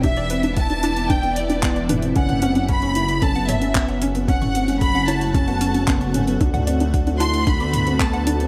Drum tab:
HH |xxxxxxxxxxxxxxxx|xxxxxxxxxxxxxxxx|xxxxxxxxxxxxxxxx|xxxxxxxxxxxxxxxx|
CP |------------x---|------------x---|------------x---|------------x---|
T2 |--------------o-|-o--------o-----|-o------------o-|-o--------o-----|
BD |o---o---o---o---|o---o---o---o---|o---o---o---o---|o---o---o---o---|